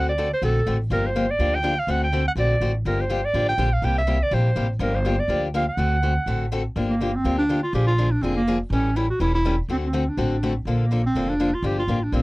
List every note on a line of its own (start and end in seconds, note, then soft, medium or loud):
0.00 0.31 D2 medium
0.00 0.11 D3 medium
0.00 0.11 A3 medium
0.00 0.11 C4 medium
0.00 0.11 F#4 medium
0.00 0.11 A4 medium
0.09 0.30 D5 medium
0.18 0.27 D3 medium
0.18 0.27 A3 medium
0.18 0.27 C4 medium
0.18 0.28 F#4 medium
0.18 0.28 A4 medium
0.33 0.42 C5 medium
0.42 0.62 A#1 medium
0.42 0.59 D3 medium
0.42 0.60 A3 medium
0.42 0.60 C4 medium
0.42 0.60 F#4 medium
0.42 0.60 A4 medium
0.42 0.78 A4 medium
0.66 0.87 A1 medium
0.66 0.76 D3 medium
0.66 0.76 A3 medium
0.66 0.76 C4 medium
0.66 0.76 F#4 medium
0.66 0.76 A4 medium
0.90 1.29 G1 medium
0.90 1.08 D3 medium
0.90 1.08 F3 medium
0.90 1.08 A#3 medium
0.90 1.09 D4 medium
0.90 1.09 G4 medium
0.90 1.08 A#4 medium
1.07 1.32 C5 medium
1.16 1.25 D3 medium
1.16 1.25 F3 medium
1.16 1.25 A#3 medium
1.16 1.25 D4 medium
1.16 1.25 G4 medium
1.31 1.56 D5 loud
1.39 1.78 D2 medium
1.39 1.57 D3 medium
1.39 1.57 F3 medium
1.39 1.57 A#3 medium
1.39 1.57 D4 medium
1.39 1.57 G4 medium
1.55 1.81 G5 loud
1.63 1.73 D3 medium
1.63 1.73 F3 medium
1.63 1.73 A#3 medium
1.63 1.73 D4 medium
1.63 1.74 G4 medium
1.79 1.92 F5 medium
1.87 2.26 D2 medium
1.87 2.06 D3 medium
1.87 2.06 A3 medium
1.87 2.06 C4 medium
1.87 2.06 F#4 medium
1.87 2.06 A4 medium
1.87 2.02 F#5 medium
2.04 2.25 G5 medium
2.12 2.22 D3 medium
2.12 2.22 A3 medium
2.12 2.22 C4 medium
2.12 2.23 F#4 medium
2.12 2.23 A4 medium
2.28 2.32 F#5 medium
2.35 2.57 A#1 medium
2.35 2.54 D3 medium
2.35 2.54 A3 medium
2.35 2.55 C4 medium
2.35 2.55 F#4 medium
2.35 2.55 A4 medium
2.40 2.73 D5 medium
2.61 2.81 A1 medium
2.61 2.71 D3 medium
2.61 2.71 A3 medium
2.61 2.71 C4 medium
2.61 2.71 F#4 medium
2.61 2.71 A4 medium
2.85 3.24 G1 medium
2.85 3.03 D3 medium
2.85 3.03 F3 medium
2.85 3.03 A#3 medium
2.85 3.03 D4 medium
2.85 3.04 G4 medium
2.85 3.03 A#4 medium
3.01 3.27 C5 medium
3.10 3.19 D3 medium
3.10 3.20 F3 medium
3.10 3.20 A#3 medium
3.10 3.20 D4 medium
3.10 3.20 G4 medium
3.25 3.48 D5 medium
3.34 3.54 A1 medium
3.34 3.52 D3 medium
3.34 3.52 F3 medium
3.34 3.52 A#3 medium
3.34 3.52 D4 medium
3.34 3.52 G4 medium
3.49 3.75 G5 loud
3.58 3.79 A#1 medium
3.58 3.68 D3 medium
3.58 3.68 F3 medium
3.58 3.68 A#3 medium
3.58 3.68 D4 medium
3.58 3.69 G4 medium
3.73 3.86 F5 medium
3.82 4.21 C2 medium
3.82 4.01 C3 medium
3.82 4.01 G3 medium
3.82 4.01 A#3 medium
3.82 4.01 E4 medium
3.82 4.01 G4 medium
3.82 3.97 G5 medium
3.98 4.24 E5 medium
4.07 4.17 C3 medium
4.07 4.17 G3 medium
4.07 4.17 A#3 medium
4.07 4.17 E4 medium
4.07 4.17 G4 medium
4.23 4.36 D5 medium
4.31 4.52 A#1 medium
4.31 4.49 C3 medium
4.31 4.49 G3 medium
4.31 4.49 A#3 medium
4.31 4.49 E4 medium
4.31 4.50 G4 medium
4.31 4.71 C5 medium
4.55 4.76 A1 medium
4.55 4.66 C3 medium
4.55 4.66 G3 medium
4.55 4.66 A#3 medium
4.55 4.66 E4 medium
4.55 4.66 G4 medium
4.79 5.19 G1 loud
4.79 4.98 D3 medium
4.79 4.98 F3 medium
4.79 4.98 A#3 medium
4.79 4.98 D4 medium
4.79 4.98 G4 medium
4.79 4.97 A#4 medium
4.95 5.21 C5 medium
5.05 5.15 D3 medium
5.05 5.15 F3 medium
5.05 5.15 A#3 medium
5.05 5.15 D4 medium
5.05 5.15 G4 medium
5.20 5.43 D5 medium
5.28 5.67 D2 medium
5.28 5.47 D3 medium
5.28 5.47 F3 medium
5.28 5.47 A#3 medium
5.28 5.47 D4 medium
5.28 5.47 G4 medium
5.54 5.64 D3 medium
5.54 5.64 F3 medium
5.54 5.64 A#3 medium
5.54 5.64 D4 medium
5.54 5.64 G4 medium
5.54 5.67 F5 medium
5.69 6.48 F#5 medium
5.77 6.17 D2 medium
5.77 5.95 D3 medium
5.77 5.96 A3 medium
5.77 5.96 C4 medium
5.77 5.96 F#4 medium
5.77 5.96 A4 medium
6.03 6.12 D3 medium
6.03 6.13 A3 medium
6.03 6.13 C4 medium
6.03 6.13 F#4 medium
6.03 6.13 A4 medium
6.26 6.65 A1 medium
6.26 6.45 D3 medium
6.26 6.45 A3 medium
6.26 6.45 C4 medium
6.26 6.45 F#4 medium
6.26 6.45 A4 medium
6.52 6.61 D3 medium
6.52 6.61 A3 medium
6.52 6.62 C4 medium
6.52 6.62 F#4 medium
6.52 6.62 A4 medium
6.76 7.15 G1 medium
6.76 6.93 D3 medium
6.76 6.94 F3 medium
6.76 6.94 A#3 medium
6.76 6.94 D4 medium
6.76 6.94 G4 medium
6.90 7.17 A#3 medium
7.01 7.10 D3 medium
7.01 7.11 F3 medium
7.01 7.10 A#3 medium
7.01 7.11 D4 medium
7.01 7.11 G4 medium
7.15 7.38 C4 medium
7.24 7.63 D2 medium
7.24 7.42 D3 medium
7.24 7.42 F3 medium
7.24 7.42 A#3 medium
7.24 7.43 D4 medium
7.24 7.43 G4 medium
7.39 7.61 D4 loud
7.49 7.59 D3 medium
7.49 7.59 F3 medium
7.49 7.59 A#3 medium
7.49 7.59 D4 medium
7.49 7.59 G4 medium
7.63 7.73 F4 medium
7.73 8.12 A#1 medium
7.73 7.91 D3 medium
7.73 7.92 F3 medium
7.73 7.92 A#3 medium
7.73 7.92 D4 medium
7.73 7.86 G4 medium
7.73 7.92 G#4 medium
7.87 8.13 F4 medium
7.98 8.08 D3 medium
7.98 8.08 F3 medium
7.98 8.08 A#3 medium
7.98 8.08 D4 medium
7.98 8.08 G#4 medium
8.12 8.24 D4 medium
8.21 8.61 F1 medium
8.21 8.40 D3 medium
8.21 8.41 F3 medium
8.21 8.41 A#3 medium
8.21 8.36 C4 medium
8.21 8.41 D4 medium
8.21 8.41 G#4 medium
8.36 8.59 A#3 medium
8.47 8.57 D3 medium
8.47 8.57 F3 medium
8.47 8.57 A#3 medium
8.47 8.57 D4 loud
8.47 8.57 G#4 medium
8.70 9.09 A1 medium
8.70 8.89 E3 medium
8.70 8.89 G3 medium
8.70 8.98 C#4 loud
8.70 8.89 C#4 medium
8.70 8.90 E4 medium
8.70 8.90 A4 medium
8.96 9.06 E3 medium
8.96 9.06 G3 medium
8.96 9.06 C#4 medium
8.96 9.09 E4 medium
8.96 9.06 E4 medium
8.96 9.06 A4 medium
9.10 9.20 F#4 medium
9.20 9.59 E1 medium
9.20 9.38 E3 medium
9.20 9.38 G3 medium
9.20 9.38 C#4 medium
9.20 9.38 E4 medium
9.20 9.33 E4 loud
9.20 9.38 A4 medium
9.35 9.57 E4 medium
9.45 9.54 E3 medium
9.45 9.55 G3 medium
9.45 9.55 C#4 medium
9.45 9.55 E4 medium
9.45 9.55 A4 medium
9.68 10.08 D2 medium
9.68 9.87 D3 medium
9.68 9.87 A3 medium
9.68 9.87 C4 medium
9.68 9.77 C4 medium
9.68 9.87 F#4 medium
9.68 9.87 A4 medium
9.85 10.11 C4 medium
9.93 10.03 D3 medium
9.93 10.03 A3 medium
9.93 10.03 C4 medium
9.93 10.03 F#4 medium
9.93 10.03 A4 medium
10.09 10.56 D4 medium
10.17 10.56 A1 medium
10.17 10.35 D3 medium
10.17 10.35 A3 medium
10.17 10.35 C4 medium
10.17 10.35 F#4 medium
10.17 10.36 A4 medium
10.43 10.52 D3 medium
10.43 10.52 A3 medium
10.43 10.52 C4 medium
10.43 10.52 F#4 medium
10.43 10.53 A4 medium
10.65 11.05 A#1 medium
10.65 10.84 D3 medium
10.65 10.84 F3 medium
10.65 10.85 A#3 medium
10.65 10.85 D4 medium
10.65 10.85 A4 medium
10.82 11.04 A#3 medium
10.91 11.01 D3 medium
10.91 11.01 F3 medium
10.91 11.01 A#3 medium
10.91 11.01 D4 medium
10.91 11.01 A4 medium
11.06 11.31 C4 medium
11.15 11.54 F1 medium
11.15 11.33 D3 medium
11.15 11.33 F3 medium
11.15 11.33 A#3 medium
11.15 11.33 D4 medium
11.15 11.33 A4 medium
11.29 11.56 D4 medium
11.40 11.49 D3 medium
11.40 11.49 F3 medium
11.40 11.50 A#3 medium
11.40 11.50 D4 medium
11.40 11.50 A4 medium
11.54 11.67 F4 medium
11.62 11.82 G1 medium
11.62 11.81 D3 medium
11.62 11.81 F3 medium
11.62 11.82 A#3 medium
11.62 11.82 D4 medium
11.62 11.82 G4 medium
11.62 11.78 G4 medium
11.79 12.05 F4 medium
11.88 12.09 A1 medium
11.88 11.98 D3 medium
11.88 11.98 F3 medium
11.88 11.98 A#3 medium
11.88 11.98 D4 medium
11.88 11.99 G4 medium
12.03 12.14 D4 medium
12.12 12.22 A#1 medium
12.12 12.22 D3 medium
12.12 12.22 F3 medium
12.12 12.22 A#3 medium
12.12 12.22 C4 medium
12.12 12.22 D4 medium
12.12 12.22 G4 medium